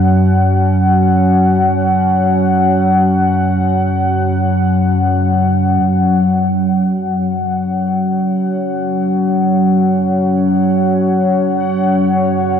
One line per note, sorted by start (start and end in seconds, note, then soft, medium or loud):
0.00 5.82 F#2 medium
0.00 5.83 F#3 medium
0.00 5.84 F#3 medium
0.00 5.84 C#4 medium
0.00 5.84 C#5 medium
0.00 12.60 F#5 medium
5.84 12.60 F#2 medium
5.84 12.60 F#3 medium
5.84 12.60 F#5 medium
6.36 12.60 C#5 medium
7.16 12.60 C#4 medium